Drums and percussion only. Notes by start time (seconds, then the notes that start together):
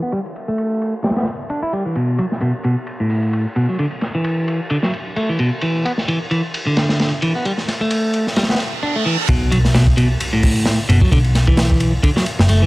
0.12 ride
0.26 ride
0.36 ride
0.58 ride
0.82 ride
1.04 snare, ride
1.10 snare, ride
1.16 snare, ride
1.22 snare, ride
1.27 ride
1.49 ride
1.73 ride
1.95 ride
2.18 ride
2.32 snare
2.41 ride
2.64 ride
2.87 ride
3.10 open hi-hat
3.23 ride
3.33 ride
3.56 ride
3.79 ride
3.91 ride
4.01 snare, ride
4.24 ride
4.48 ride
4.70 ride
4.83 snare
4.93 ride
5.16 ride
5.39 ride
5.61 ride
5.85 ride
5.98 snare
6.08 ride
6.31 ride
6.54 ride
6.77 snare, ride
6.89 snare, ride
6.99 snare, ride
7.22 ride
7.45 ride
7.58 snare
7.68 snare, ride
7.90 ride
8.13 ride
8.27 snare
8.36 snare, ride
8.43 snare, ride
8.49 snare, ride
8.55 snare, ride
8.60 ride
9.28 kick, ride
9.52 ride
9.65 snare
9.75 snare, ride
9.87 kick
9.98 ride
10.20 ride
10.43 kick, open hi-hat
10.56 ride
10.66 snare, ride
10.90 ride
11.01 kick
11.12 kick, ride
11.24 ride
11.35 snare, ride
11.47 kick
11.57 snare, ride
11.71 kick
11.80 ride
12.03 kick, ride
12.17 snare
12.26 ride
12.39 snare
12.49 ride